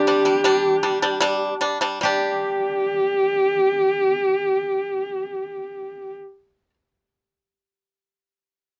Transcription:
0.00 2.03 C4 medium
0.00 2.35 D4 medium
0.00 0.97 E4 medium
0.00 1.62 G4 medium
0.00 2.03 G4 medium
0.07 0.22 G3 medium
0.07 0.23 D4 medium
0.25 0.41 G3 medium
0.25 0.41 D4 medium
0.44 0.75 G3 medium
0.44 0.75 D4 loud
0.83 0.98 G3 medium
0.83 0.98 D4 medium
1.02 1.18 G3 medium
1.02 1.18 D4 medium
1.21 1.53 G3 loud
1.21 1.53 D4 loud
1.61 1.77 G3 medium
1.61 1.78 D4 medium
1.81 1.98 G3 medium
1.81 1.98 D4 medium
2.01 6.70 G3 medium
2.01 6.14 G4 medium
2.01 6.72 G4 medium
2.05 6.74 D4 medium

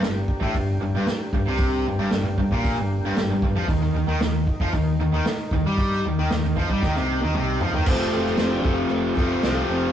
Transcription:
0.00 0.26 G1 medium
0.00 0.24 G2 medium
0.00 3.65 D4 medium
0.00 3.65 G4 medium
0.00 3.65 A#4 medium
0.00 3.65 G5 medium
0.00 snare loud
0.00 open hi-hat medium
0.28 kick medium
0.40 0.53 A1 loud
0.40 0.53 A2 medium
0.40 kick medium
0.54 0.79 G1 medium
0.54 0.76 G2 medium
0.54 kick medium
0.54 open hi-hat medium
0.80 0.92 G1 medium
0.80 0.94 G2 medium
0.93 1.06 G1 medium
0.93 1.06 G2 loud
1.07 muted fingered electric bass stroke soft
1.07 muted distorted electric guitar stroke medium
1.07 snare loud
1.07 open hi-hat medium
1.33 1.45 G1 medium
1.33 1.47 G2 medium
1.33 kick medium
1.46 1.83 C2 medium
1.46 1.84 C3 medium
1.58 kick loud
1.58 open hi-hat medium
1.86 1.98 G1 medium
1.86 1.98 G2 medium
1.99 2.11 G1 medium
1.99 2.10 G2 loud
2.11 2.23 G1 medium
2.11 2.22 G2 medium
2.11 snare loud
2.11 open hi-hat medium
2.23 2.36 G1 medium
2.23 2.37 G2 medium
2.38 2.50 G1 medium
2.38 2.51 G2 medium
2.38 kick medium
2.51 2.75 A#1 medium
2.51 2.77 A#2 medium
2.51 kick medium
2.64 kick medium
2.64 open hi-hat medium
2.77 3.01 G1 medium
2.77 2.98 G2 medium
3.02 3.15 G1 medium
3.02 3.17 G2 loud
3.16 3.27 G1 medium
3.16 3.29 G2 medium
3.16 snare loud
3.16 open hi-hat medium
3.28 3.41 G1 medium
3.28 3.42 G2 medium
3.42 3.53 G1 medium
3.42 3.56 G2 medium
3.42 kick medium
3.54 3.67 F2 medium
3.54 3.68 F3 medium
3.68 3.78 D#2 medium
3.68 3.81 D#3 medium
3.68 7.83 D#4 medium
3.68 7.83 A#4 medium
3.68 7.83 D#5 medium
3.68 kick loud
3.68 open hi-hat medium
3.78 3.92 D#2 medium
3.78 3.93 D#3 medium
3.92 4.06 D#2 medium
3.92 4.06 D#3 medium
4.06 4.17 D#2 medium
4.06 4.20 D#3 loud
4.18 4.44 D#2 medium
4.18 4.42 D#3 medium
4.18 snare loud
4.18 open hi-hat medium
4.47 kick medium
4.60 4.72 F2 medium
4.60 4.73 F3 medium
4.60 kick medium
4.73 4.97 D#2 medium
4.73 4.94 D#3 medium
4.73 kick medium
4.73 open hi-hat medium
4.97 5.11 D#2 medium
4.97 5.11 D#3 medium
5.11 5.24 D#2 medium
5.11 5.25 D#3 loud
5.24 muted fingered electric bass stroke soft
5.24 muted distorted electric guitar stroke medium
5.24 snare loud
5.24 open hi-hat medium
5.51 5.63 D#2 medium
5.51 5.65 D#3 medium
5.51 kick medium
5.63 6.01 G2 medium
5.63 6.04 G3 loud
5.78 kick loud
5.78 open hi-hat soft
5.91 snare soft
6.04 6.17 D#2 medium
6.04 6.18 D#3 medium
6.17 6.29 D#2 medium
6.17 6.30 D#3 medium
6.30 6.43 D#2 medium
6.30 6.43 D#3 medium
6.30 snare loud
6.30 open hi-hat medium
6.44 6.56 D#2 medium
6.44 6.56 D#3 medium
6.56 6.69 F2 medium
6.56 6.69 F3 medium
6.56 kick medium
6.69 6.82 G2 loud
6.69 6.82 G3 medium
6.69 kick medium
6.82 6.95 D#2 medium
6.82 6.94 D#3 loud
6.82 kick medium
6.82 snare medium
6.95 7.21 C2 medium
6.95 7.21 C3 loud
6.95 snare medium
7.20 7.34 D#2 medium
7.20 7.34 D#3 loud
7.20 high tom medium
7.34 7.59 C2 medium
7.34 7.60 C3 medium
7.34 mid tom medium
7.61 7.73 F2 medium
7.61 7.73 F3 loud
7.61 floor tom medium
7.73 7.86 D#2 medium
7.73 7.87 D#3 medium
7.73 floor tom medium
7.86 8.04 F1 loud
7.86 9.16 F2 medium
7.86 9.16 C3 medium
7.86 8.61 F3 medium
7.86 9.16 F3 medium
7.86 8.14 F3 medium
7.86 8.61 A3 soft
7.86 9.16 A3 loud
7.86 8.40 C4 medium
7.86 9.16 C4 medium
7.86 8.14 C4 medium
7.86 9.16 F4 loud
7.86 kick loud
7.86 crash loud
7.86 crash medium
7.90 8.15 F4 medium
7.90 8.12 A4 loud
8.00 snare soft
8.13 8.30 F1 medium
8.13 8.40 C4 medium
8.13 8.41 F4 medium
8.13 8.39 A4 medium
8.26 snare soft
8.37 8.56 F1 medium
8.37 8.65 F3 medium
8.37 8.66 C4 medium
8.37 snare loud
8.37 crash medium
8.41 8.53 C4 medium
8.41 8.65 F4 medium
8.41 8.63 A4 medium
8.55 8.66 D4 medium
8.62 8.81 F1 medium
8.62 8.65 E4 medium
8.62 9.14 A4 medium
8.62 kick medium
8.66 9.18 C4 soft
8.66 9.67 F4 medium
8.66 9.17 F4 soft
8.90 9.08 F1 medium
8.90 9.14 F3 medium
8.90 9.14 A3 soft
8.90 9.14 C4 medium
8.90 crash medium
9.15 9.34 F1 medium
9.15 9.41 F2 medium
9.15 9.42 C3 medium
9.15 9.42 F3 medium
9.15 9.42 A3 medium
9.15 9.42 C4 medium
9.15 9.44 C4 soft
9.15 9.42 F4 loud
9.15 9.44 F4 medium
9.15 9.43 A4 medium
9.15 kick medium
9.43 9.60 C2 medium
9.43 9.92 F2 medium
9.43 9.92 C3 medium
9.43 9.92 F3 medium
9.43 9.92 A3 medium
9.43 9.92 C4 medium
9.43 9.92 F4 medium
9.43 snare loud
9.43 crash medium
9.47 9.92 A4 medium
9.69 9.86 F1 medium
9.69 9.92 C4 medium

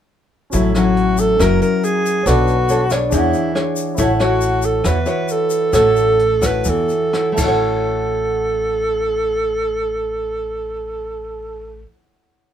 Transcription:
0.50 1.36 A1 medium
0.50 1.37 A2 soft
0.50 0.71 F#3 soft
0.50 1.35 C#4 soft
0.50 0.72 C#4 medium
0.50 1.37 F#4 soft
0.50 1.38 A4 soft
0.50 kick soft
0.50 closed hi-hat medium
0.50 shaker medium
0.54 0.72 E4 medium
0.54 0.78 E4 medium
0.54 1.39 E5 soft
0.75 1.36 F#3 medium
0.75 1.37 C#4 medium
0.75 1.37 E4 medium
0.75 1.21 F#4 medium
0.75 cross-stick soft
0.75 closed hi-hat soft
0.75 shaker soft
0.97 closed hi-hat soft
1.17 1.43 A4 medium
1.17 closed hi-hat soft
1.17 shaker medium
1.36 1.60 F#1 medium
1.36 2.24 F#3 medium
1.36 2.22 C#4 soft
1.36 2.22 C#4 medium
1.36 2.23 E4 soft
1.36 2.23 F#4 soft
1.36 kick medium
1.36 cross-stick medium
1.36 closed hi-hat medium
1.40 2.24 A#4 soft
1.40 2.23 A#4 medium
1.40 1.62 A#4 loud
1.40 2.25 E5 medium
1.40 shaker medium
1.61 1.86 A#4 medium
1.61 closed hi-hat soft
1.61 shaker soft
1.83 2.28 G#4 medium
1.83 closed hi-hat soft
1.83 shaker soft
2.05 closed hi-hat soft
2.05 shaker soft
2.23 3.08 B1 medium
2.23 3.10 B3 medium
2.23 2.54 D4 soft
2.23 2.94 F#4 medium
2.23 3.10 A4 soft
2.23 2.54 A4 medium
2.23 3.11 B4 soft
2.23 3.09 C#5 soft
2.23 kick medium
2.23 cross-stick soft
2.23 closed hi-hat medium
2.23 shaker medium
2.27 2.54 C#5 medium
2.27 3.12 D5 medium
2.47 closed hi-hat soft
2.47 shaker soft
2.69 2.82 D4 soft
2.69 2.82 A4 medium
2.69 2.82 C#5 medium
2.69 closed hi-hat soft
2.69 shaker soft
2.90 3.52 D4 soft
2.90 3.13 D4 medium
2.90 3.52 G#4 medium
2.90 3.52 C#5 medium
2.90 cross-stick medium
2.90 closed hi-hat soft
2.90 shaker medium
3.10 3.32 E2 medium
3.10 3.96 E3 medium
3.10 3.95 D4 medium
3.10 3.74 E4 medium
3.10 3.96 G#4 soft
3.10 3.97 C#5 soft
3.10 kick medium
3.10 closed hi-hat medium
3.10 shaker medium
3.15 3.98 F#5 medium
3.33 closed hi-hat soft
3.33 shaker soft
3.55 3.96 D4 medium
3.55 3.96 G#4 soft
3.55 3.97 C#5 medium
3.55 cross-stick soft
3.55 closed hi-hat soft
3.76 closed hi-hat soft
3.76 shaker medium
3.95 4.81 A1 medium
3.95 4.83 A3 medium
3.95 7.31 E4 soft
3.95 4.11 E4 medium
3.95 7.35 A4 soft
3.95 kick medium
3.95 closed hi-hat soft
3.95 shaker medium
3.99 4.23 E4 medium
3.99 4.11 F#4 medium
3.99 7.36 C#5 soft
3.99 4.12 C#5 medium
3.99 7.37 F#5 soft
4.20 4.81 E4 medium
4.20 4.82 F#4 medium
4.20 4.67 F#4 loud
4.20 4.82 C#5 medium
4.20 cross-stick soft
4.20 closed hi-hat soft
4.20 shaker soft
4.41 closed hi-hat soft
4.41 shaker soft
4.62 4.88 A4 medium
4.62 closed hi-hat soft
4.62 shaker medium
4.84 5.05 E2 medium
4.84 5.71 E3 medium
4.84 4.98 E4 medium
4.84 4.98 F#4 medium
4.84 5.08 B4 medium
4.84 4.98 C#5 medium
4.84 kick medium
4.84 cross-stick medium
4.84 closed hi-hat medium
4.84 shaker medium
5.06 5.70 E4 medium
5.06 5.70 F#4 medium
5.06 5.70 C#5 medium
5.06 closed hi-hat soft
5.06 shaker soft
5.10 5.33 B4 medium
5.28 5.74 A4 medium
5.28 closed hi-hat soft
5.28 shaker soft
5.50 closed hi-hat soft
5.50 shaker medium
5.72 6.62 A1 medium
5.72 6.63 A3 medium
5.72 6.19 E4 medium
5.72 6.19 F#4 medium
5.72 6.47 A4 loud
5.72 6.19 C#5 medium
5.72 kick soft
5.72 cross-stick medium
5.72 closed hi-hat medium
5.72 shaker medium
5.96 closed hi-hat soft
5.96 shaker soft
6.19 closed hi-hat soft
6.41 7.10 E4 soft
6.41 7.10 F#4 medium
6.41 7.10 C#5 medium
6.41 kick medium
6.41 cross-stick medium
6.41 closed hi-hat soft
6.41 shaker medium
6.46 6.71 B4 medium
6.64 6.88 E2 medium
6.64 7.39 E3 medium
6.64 kick medium
6.64 closed hi-hat medium
6.64 shaker medium
6.70 7.40 A4 medium
6.89 closed hi-hat soft
6.89 shaker soft
7.13 7.37 E4 soft
7.13 7.39 F#4 medium
7.13 7.39 C#5 medium
7.13 cross-stick medium
7.13 closed hi-hat soft
7.32 11.82 A3 medium
7.32 11.78 E4 soft
7.32 11.82 A4 soft
7.37 11.84 A1 medium
7.37 11.88 E4 medium
7.37 11.86 A4 medium
7.37 11.86 C#5 soft
7.37 kick medium
7.37 crash medium
7.37 shaker medium
7.43 11.93 F#4 medium
7.43 11.90 F#5 medium
7.48 11.98 C#5 medium

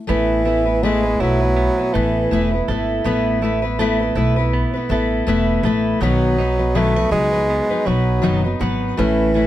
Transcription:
0.07 1.16 A1 medium
0.07 0.85 E3 medium
0.07 0.44 A3 medium
0.07 0.45 B3 medium
0.07 0.46 E4 medium
0.07 0.46 B4 medium
0.45 0.66 A3 medium
0.45 0.66 B3 medium
0.45 0.65 E4 medium
0.45 0.64 B4 medium
0.66 0.82 B3 soft
0.66 0.83 E4 soft
0.66 0.83 B4 soft
0.83 1.22 G#3 loud
0.83 1.03 A3 medium
0.83 1.03 B3 medium
0.83 1.04 E4 medium
0.83 1.02 B4 medium
1.03 1.21 B3 soft
1.03 1.21 E4 soft
1.03 1.20 B4 soft
1.20 1.67 B1 medium
1.20 1.96 F#3 loud
1.20 1.41 A3 medium
1.20 1.41 B3 medium
1.20 1.41 E4 medium
1.20 1.39 B4 medium
1.40 1.79 B3 soft
1.40 1.78 E4 soft
1.40 1.77 B4 soft
1.57 3.05 B3 medium
1.78 1.93 B3 soft
1.78 1.94 E4 soft
1.78 1.94 B4 soft
1.94 2.25 A1 medium
1.94 2.68 E3 medium
1.94 2.30 A3 medium
1.94 2.31 B3 medium
1.94 2.32 E4 medium
1.94 2.67 A4 medium
1.94 2.32 B4 medium
2.31 2.62 E1 medium
2.31 2.52 A3 medium
2.31 2.52 B3 medium
2.31 2.52 E4 medium
2.31 2.50 B4 medium
2.51 2.68 B3 soft
2.51 2.69 E4 soft
2.51 2.68 B4 soft
2.68 2.99 G#1 medium
2.68 3.03 A3 medium
2.68 3.05 B3 medium
2.68 3.05 E4 medium
2.68 3.78 A4 medium
2.68 3.06 B4 medium
3.04 4.12 A1 medium
3.04 3.41 A3 medium
3.04 3.42 B3 medium
3.04 3.42 E4 medium
3.04 3.43 B4 medium
3.42 3.62 A3 medium
3.42 3.63 B3 medium
3.42 3.62 E4 medium
3.42 3.61 B4 medium
3.62 3.79 B3 soft
3.62 3.79 E4 soft
3.62 3.79 B4 medium
3.79 4.00 A3 medium
3.79 4.00 B3 medium
3.79 4.00 E4 medium
3.79 4.90 A4 medium
3.79 3.98 B4 medium
3.99 4.14 B3 soft
3.99 4.16 E4 soft
3.99 4.16 B4 soft
4.15 4.63 B1 medium
4.15 4.36 A3 medium
4.15 4.36 B3 medium
4.15 4.37 E4 medium
4.15 4.35 B4 medium
4.36 4.75 B3 soft
4.36 4.74 E4 soft
4.36 4.72 B4 medium
4.53 7.50 B3 medium
4.73 4.90 B3 soft
4.73 4.90 E4 soft
4.73 4.90 B4 medium
4.89 5.20 A1 medium
4.89 5.25 A3 medium
4.89 5.27 B3 medium
4.89 5.27 E4 medium
4.89 5.64 A4 medium
4.89 5.28 B4 medium
5.27 5.58 E1 medium
5.27 5.63 A3 medium
5.27 5.64 B3 medium
5.27 5.65 E4 medium
5.27 5.65 B4 medium
5.63 5.94 A1 medium
5.63 6.01 A3 medium
5.63 6.02 B3 medium
5.63 6.02 E4 medium
5.63 6.10 A4 medium
5.63 6.03 B4 medium
6.01 7.08 B1 medium
6.01 6.39 B2 medium
6.01 6.39 D#3 medium
6.01 6.78 F#3 medium
6.01 6.37 F#3 medium
6.01 6.38 B3 medium
6.01 6.39 D#4 medium
6.01 6.40 B4 medium
6.38 6.59 F#3 soft
6.38 6.59 B3 medium
6.38 6.58 D#4 medium
6.38 6.57 B4 medium
6.58 6.74 F#3 soft
6.58 6.75 B3 soft
6.58 6.75 D#4 soft
6.58 6.75 B4 soft
6.75 6.96 B2 medium
6.75 6.96 D#3 medium
6.75 6.96 F#3 medium
6.75 7.11 A3 loud
6.75 6.96 B3 medium
6.75 6.96 D#4 medium
6.75 6.96 E4 medium
6.75 6.95 B4 medium
6.96 7.10 F#3 soft
6.96 7.11 B3 soft
6.96 7.12 D#4 soft
6.96 7.86 F#4 medium
6.96 7.13 B4 soft
7.11 7.59 C#2 medium
7.11 7.32 F#3 medium
7.11 7.88 G#3 loud
7.11 7.32 B3 medium
7.11 7.32 D#4 medium
7.11 7.31 B4 medium
7.32 7.71 F#3 soft
7.32 7.70 B3 soft
7.32 7.70 D#4 soft
7.32 7.69 B4 soft
7.50 9.38 B3 medium
7.70 7.84 F#3 soft
7.70 7.85 B3 soft
7.70 7.87 D#4 medium
7.70 7.87 B4 soft
7.85 8.17 B1 medium
7.85 8.22 F#3 medium
7.85 8.61 F#3 medium
7.85 8.22 B3 medium
7.85 8.23 D#4 medium
7.85 8.60 F#4 medium
7.85 8.23 B4 medium
8.22 8.54 F#1 medium
8.22 8.43 B2 medium
8.22 8.43 D#3 medium
8.22 8.44 F#3 medium
8.22 8.44 B3 medium
8.22 8.44 D#4 medium
8.22 8.43 B4 medium
8.44 8.58 F#3 soft
8.44 8.60 B3 soft
8.44 8.61 D#4 soft
8.44 8.61 B4 soft
8.59 8.91 G#1 medium
8.59 8.97 F#3 medium
8.59 8.98 B3 medium
8.59 8.98 D#4 medium
8.59 9.06 F#4 medium
8.59 8.98 B4 medium
8.97 9.47 A1 medium
8.97 9.47 E3 medium
8.97 9.33 A3 medium
8.97 9.34 C#4 medium
8.97 9.35 E4 medium
8.97 9.35 B4 medium
9.34 9.47 A3 medium
9.34 9.47 C#4 medium
9.34 9.47 E4 medium
9.34 9.47 B4 medium

